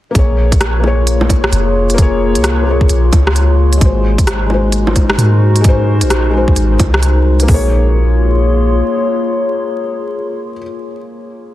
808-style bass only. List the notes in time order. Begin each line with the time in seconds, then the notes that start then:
0.15 A#1
1.52 F1
2.35 C2
2.90 A#1
3.13 C#2
3.81 G#1
5.18 G#2
6.02 A#1
6.56 G#1
6.80 C2